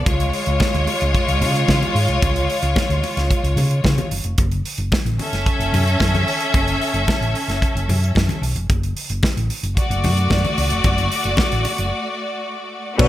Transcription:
0.06 0.29 C#2 medium
0.06 4.07 G#3 medium
0.06 4.07 F4 medium
0.06 4.07 C#5 medium
0.06 kick loud
0.06 closed hi-hat medium
0.06 muted conga soft
0.20 closed hi-hat soft
0.33 open hi-hat medium
0.46 0.58 C#2 medium
0.46 closed hi-hat soft
0.60 kick loud
0.60 snare medium
0.60 high conga medium
0.74 0.86 D2 medium
0.74 closed hi-hat soft
0.87 open hi-hat medium
0.87 muted conga soft
1.01 1.13 C#2 medium
1.01 closed hi-hat soft
1.15 kick medium
1.15 closed hi-hat soft
1.28 1.43 C#2 medium
1.28 closed hi-hat soft
1.41 1.64 C#3 medium
1.41 open hi-hat medium
1.41 muted conga soft
1.41 low conga medium
1.55 closed hi-hat soft
1.68 1.80 C#3 medium
1.68 kick medium
1.68 snare medium
1.68 high conga medium
1.82 closed hi-hat soft
1.82 high conga medium
1.95 2.06 G#2 medium
1.95 open hi-hat medium
2.08 2.20 C2 medium
2.08 closed hi-hat soft
2.22 2.45 C#2 medium
2.22 kick loud
2.22 closed hi-hat medium
2.22 muted conga soft
2.36 closed hi-hat soft
2.50 open hi-hat medium
2.62 2.74 C#2 medium
2.62 closed hi-hat soft
2.76 kick medium
2.76 snare medium
2.76 high conga medium
2.90 3.01 D2 medium
2.90 closed hi-hat soft
3.03 open hi-hat medium
3.03 muted conga soft
3.17 3.28 C#2 medium
3.17 snare soft
3.17 closed hi-hat soft
3.31 kick medium
3.31 closed hi-hat medium
3.43 3.55 C#2 medium
3.43 closed hi-hat soft
3.56 3.79 C#3 medium
3.56 open hi-hat medium
3.56 muted conga soft
3.56 low conga medium
3.71 closed hi-hat soft
3.84 3.96 C#3 medium
3.84 kick medium
3.84 snare medium
3.84 high conga medium
3.98 closed hi-hat soft
3.98 high conga medium
4.11 4.23 F#1 medium
4.11 open hi-hat medium
4.24 4.36 F1 medium
4.24 closed hi-hat soft
4.38 4.61 F#1 loud
4.38 kick loud
4.38 closed hi-hat medium
4.38 muted conga soft
4.52 closed hi-hat soft
4.65 open hi-hat medium
4.78 4.90 F#1 medium
4.78 closed hi-hat soft
4.92 kick loud
4.92 snare loud
4.92 high conga medium
5.05 5.17 A1 medium
5.05 closed hi-hat soft
5.19 8.39 C#4 medium
5.19 8.39 A4 medium
5.19 8.39 E5 medium
5.19 open hi-hat medium
5.19 muted conga soft
5.32 5.44 F#1 medium
5.32 snare soft
5.32 closed hi-hat soft
5.46 kick medium
5.46 closed hi-hat medium
5.59 5.71 F#1 medium
5.59 closed hi-hat soft
5.73 5.96 F#2 medium
5.73 open hi-hat medium
5.73 muted conga soft
5.73 low conga medium
5.87 closed hi-hat soft
6.00 6.23 F#2 medium
6.00 kick medium
6.00 snare loud
6.00 high conga medium
6.14 closed hi-hat soft
6.14 high conga medium
6.28 open hi-hat medium
6.40 closed hi-hat soft
6.54 6.77 F#1 medium
6.54 kick loud
6.54 closed hi-hat medium
6.54 muted conga soft
6.68 closed hi-hat soft
6.82 open hi-hat medium
6.94 7.05 F#1 medium
6.94 closed hi-hat soft
7.08 kick medium
7.08 snare loud
7.08 high conga medium
7.21 7.33 A1 medium
7.21 closed hi-hat soft
7.35 open hi-hat medium
7.48 7.60 F#1 medium
7.48 snare soft
7.48 closed hi-hat soft
7.62 kick medium
7.62 closed hi-hat medium
7.75 7.86 F#1 medium
7.75 closed hi-hat soft
7.88 8.11 F#2 medium
7.88 open hi-hat medium
7.88 muted conga soft
7.88 low conga medium
8.04 closed hi-hat soft
8.15 8.27 F#2 medium
8.15 kick medium
8.15 snare loud
8.15 high conga medium
8.29 closed hi-hat soft
8.29 high conga medium
8.42 8.53 B1 loud
8.42 open hi-hat medium
8.55 8.67 F1 medium
8.55 closed hi-hat soft
8.70 8.92 F#1 medium
8.70 kick loud
8.70 closed hi-hat medium
8.70 muted conga soft
8.83 closed hi-hat soft
8.97 open hi-hat medium
9.10 9.21 F#1 medium
9.10 closed hi-hat soft
9.23 kick loud
9.23 snare medium
9.23 high conga medium
9.37 9.48 A1 medium
9.37 closed hi-hat soft
9.50 open hi-hat medium
9.63 9.75 F#1 medium
9.63 closed hi-hat soft
9.77 12.95 A3 medium
9.77 12.96 F#4 medium
9.77 12.96 D5 medium
9.77 kick medium
9.77 closed hi-hat medium
9.90 10.05 F#1 medium
9.90 closed hi-hat soft
10.04 10.27 F#2 medium
10.04 open hi-hat medium
10.04 muted conga soft
10.04 low conga medium
10.17 closed hi-hat soft
10.30 kick medium
10.30 snare loud
10.30 high conga medium
10.44 closed hi-hat soft
10.44 high conga medium
10.58 10.69 C#2 medium
10.58 open hi-hat medium
10.70 10.83 F1 medium
10.70 closed hi-hat soft
10.84 11.07 F#1 loud
10.84 kick loud
10.84 closed hi-hat medium
10.84 muted conga soft
10.98 closed hi-hat soft
11.12 open hi-hat medium
11.24 11.36 F#1 medium
11.24 closed hi-hat soft
11.37 kick loud
11.37 snare medium
11.37 high conga medium
11.52 11.64 A1 medium
11.52 closed hi-hat soft
11.65 open hi-hat medium
11.65 muted conga soft
11.78 11.90 F#1 medium
11.78 closed hi-hat soft
12.98 13.08 B1 loud
12.98 13.08 B2 medium
12.98 13.08 D3 medium
12.98 13.08 A3 medium
12.98 13.08 B3 medium
12.98 13.08 D4 medium
12.98 13.08 A4 medium
12.98 13.08 C#5 loud
12.98 kick loud
12.98 crash loud
12.98 muted conga medium

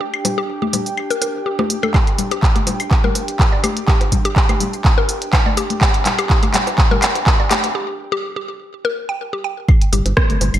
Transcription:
0.00 7.75 D4 medium
0.00 7.75 G4 loud
0.00 0.10 G4 medium
0.00 7.75 G5 medium
0.14 high woodblock medium
0.25 0.34 G1 medium
0.25 open hi-hat medium
0.25 high bongo medium
0.25 low conga medium
0.38 0.46 G1 loud
0.38 0.41 G4 loud
0.62 0.70 G1 medium
0.62 0.65 G4 medium
0.62 high conga medium
0.73 0.83 G1 medium
0.73 open hi-hat medium
0.73 high bongo soft
0.73 low conga medium
0.86 0.94 G1 loud
0.86 open hi-hat soft
0.97 high woodblock medium
1.10 1.16 A#4 loud
1.10 open hi-hat soft
1.22 1.31 F1 medium
1.22 1.28 A#4 medium
1.22 open hi-hat loud
1.22 high bongo soft
1.35 1.43 G1 medium
1.46 1.56 G4 medium
1.59 1.62 G4 medium
1.59 high bongo medium
1.59 high conga medium
1.70 1.79 A#1 medium
1.70 open hi-hat medium
1.83 1.86 A4 medium
1.83 high conga medium
1.83 high woodblock medium
1.94 2.04 G4 medium
1.94 kick loud
1.94 clap soft
1.94 high woodblock medium
2.07 closed hi-hat soft
2.18 2.28 G1 loud
2.18 open hi-hat medium
2.18 low conga medium
2.31 2.40 G1 loud
2.31 2.35 G4 loud
2.31 closed hi-hat soft
2.31 high bongo soft
2.43 kick loud
2.43 clap soft
2.56 2.64 G1 medium
2.56 2.59 G4 medium
2.56 closed hi-hat soft
2.56 high conga medium
2.67 2.76 G1 medium
2.67 open hi-hat medium
2.67 high bongo medium
2.67 low conga medium
2.80 2.88 G1 loud
2.80 open hi-hat soft
2.80 high woodblock medium
2.91 kick loud
2.91 clap medium
3.04 3.10 A#4 loud
3.04 high conga medium
3.04 low conga medium
3.15 3.25 F1 medium
3.15 open hi-hat loud
3.15 high bongo soft
3.28 3.36 G1 medium
3.28 closed hi-hat soft
3.39 kick loud
3.39 clap medium
3.52 3.61 G1 medium
3.52 3.58 D5 medium
3.64 3.73 G1 medium
3.64 3.68 G4 loud
3.64 open hi-hat medium
3.64 high bongo soft
3.64 high conga medium
3.64 high woodblock medium
3.77 closed hi-hat soft
3.88 3.98 G4 medium
3.88 kick loud
3.88 clap medium
4.01 closed hi-hat soft
4.01 high bongo medium
4.12 4.21 G1 loud
4.12 kick medium
4.12 open hi-hat medium
4.12 low conga medium
4.25 4.33 G1 loud
4.25 4.28 G4 loud
4.25 closed hi-hat medium
4.36 kick loud
4.36 clap medium
4.49 4.57 G1 medium
4.49 4.53 G4 medium
4.49 closed hi-hat soft
4.49 high bongo soft
4.49 high conga medium
4.49 high woodblock medium
4.60 4.70 G1 medium
4.60 open hi-hat medium
4.60 low conga medium
4.73 4.82 G1 loud
4.73 open hi-hat soft
4.85 kick loud
4.85 clap medium
4.98 5.03 A#4 loud
4.98 high bongo soft
5.09 5.18 F1 medium
5.09 open hi-hat medium
5.22 5.30 G1 medium
5.22 closed hi-hat medium
5.33 kick loud
5.33 clap medium
5.33 high bongo medium
5.33 high woodblock medium
5.46 5.54 G1 medium
5.46 5.52 D5 medium
5.46 high conga medium
5.57 5.67 G1 medium
5.57 5.61 G4 loud
5.57 open hi-hat medium
5.70 closed hi-hat medium
5.70 high conga soft
5.81 5.91 G4 medium
5.81 kick loud
5.81 clap medium
5.81 high bongo soft
5.94 closed hi-hat soft
6.06 6.15 G1 loud
6.06 clap medium
6.06 open hi-hat medium
6.06 low conga medium
6.19 6.27 G1 loud
6.19 6.22 G4 loud
6.19 closed hi-hat medium
6.19 high woodblock medium
6.30 kick loud
6.30 clap medium
6.30 high bongo soft
6.43 6.51 G1 medium
6.43 6.46 G4 medium
6.43 closed hi-hat soft
6.43 high conga medium
6.54 6.63 G1 medium
6.54 clap medium
6.54 open hi-hat medium
6.54 low conga medium
6.67 6.75 G1 loud
6.67 open hi-hat soft
6.67 high bongo medium
6.78 kick loud
6.78 clap medium
6.91 6.97 A#4 loud
6.91 high conga medium
6.91 low conga medium
7.02 7.12 F1 medium
7.02 clap medium
7.02 open hi-hat medium
7.02 high woodblock medium
7.15 7.24 G1 medium
7.15 closed hi-hat medium
7.15 high bongo soft
7.27 kick loud
7.27 clap medium
7.40 7.48 G1 medium
7.40 7.45 D5 medium
7.51 7.60 G1 medium
7.51 7.55 G4 loud
7.51 clap medium
7.51 open hi-hat medium
7.51 high conga medium
7.64 closed hi-hat medium
7.64 high bongo soft
7.75 7.85 G4 medium
8.12 8.15 G4 loud
8.36 8.40 G4 medium
8.85 8.90 A#4 loud
9.09 9.17 G5 medium
9.33 9.39 G4 medium
9.44 9.51 G5 medium
9.69 kick loud
9.69 high woodblock medium
9.82 closed hi-hat soft
9.93 10.02 G1 loud
9.93 9.97 G4 medium
9.93 open hi-hat medium
9.93 low conga medium
10.06 10.14 G1 loud
10.06 closed hi-hat medium
10.06 high bongo soft
10.17 kick loud
10.17 cross-stick medium
10.30 10.38 G1 medium
10.30 closed hi-hat soft
10.30 high conga medium
10.41 10.50 G1 medium
10.41 open hi-hat medium
10.41 high bongo medium
10.41 low conga medium
10.54 10.60 G1 loud
10.54 open hi-hat soft
10.54 high woodblock medium

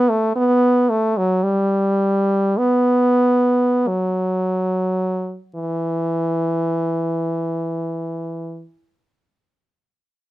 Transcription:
0.00 0.11 B3 medium
0.09 0.35 A3 medium
0.36 0.91 B3 medium
0.90 1.19 A3 medium
1.17 1.45 F#3 medium
1.43 2.59 G3 medium
2.57 3.89 B3 medium
3.87 5.38 F#3 medium
5.55 8.65 E3 medium

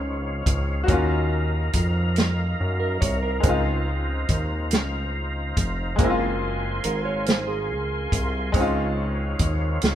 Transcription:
0.00 0.43 C#2 loud
0.00 0.82 G#3 medium
0.00 0.83 C4 medium
0.00 0.86 C4 medium
0.00 0.85 D#4 medium
0.00 5.95 D#4 medium
0.00 0.86 F4 medium
0.00 0.86 C#5 medium
0.00 5.95 F5 medium
0.46 0.85 C#2 medium
0.46 kick medium
0.46 closed hi-hat medium
0.84 3.39 A#3 medium
0.84 3.37 F#4 medium
0.88 1.70 D#2 loud
0.88 3.40 C#4 medium
0.88 3.41 A#4 medium
0.88 5.95 A#5 medium
0.88 kick loud
0.88 closed hi-hat medium
0.92 3.41 F4 medium
1.73 2.55 F2 medium
1.73 kick medium
1.73 closed hi-hat medium
2.16 snare loud
2.16 closed hi-hat medium
2.61 2.98 F#2 loud
2.80 3.00 A#4 medium
3.01 3.40 C2 loud
3.01 3.21 C#5 medium
3.01 kick medium
3.01 closed hi-hat medium
3.23 3.63 A#4 medium
3.40 5.93 G#3 medium
3.40 5.95 C4 medium
3.40 5.97 C5 medium
3.40 kick loud
3.40 closed hi-hat medium
3.44 4.25 C#2 loud
3.44 5.96 D#4 medium
3.49 5.97 F4 medium
4.29 4.75 D#2 medium
4.29 kick medium
4.29 closed hi-hat medium
4.71 5.53 C#2 loud
4.71 snare loud
4.71 closed hi-hat medium
5.57 5.95 F1 medium
5.57 kick medium
5.57 closed hi-hat medium
5.96 6.80 F#1 loud
5.96 8.49 G#3 medium
5.96 8.50 A#3 medium
5.96 8.52 F4 medium
5.96 8.52 G#5 medium
5.96 kick loud
5.96 closed hi-hat medium
6.00 8.51 C4 medium
6.00 8.52 A#4 medium
6.00 8.52 C6 medium
6.04 6.08 E4 medium
6.10 8.56 F4 medium
6.84 7.71 G#1 loud
6.84 7.04 A#4 medium
6.84 closed hi-hat medium
7.05 7.27 C#5 medium
7.26 7.47 C5 medium
7.26 snare loud
7.26 closed hi-hat medium
7.47 8.50 G#4 medium
7.70 8.08 C#2 loud
8.12 8.51 C2 medium
8.12 kick medium
8.12 closed hi-hat medium
8.52 9.35 C#2 loud
8.52 9.95 G#3 medium
8.52 9.95 C4 medium
8.52 9.95 D#4 medium
8.52 9.95 C#5 medium
8.52 9.95 F5 medium
8.52 kick loud
8.52 closed hi-hat medium
8.58 9.95 D#4 medium
8.58 9.82 F4 medium
9.39 9.78 D#2 loud
9.39 kick medium
9.39 closed hi-hat medium
9.82 9.95 C#2 medium
9.82 snare loud
9.82 closed hi-hat medium

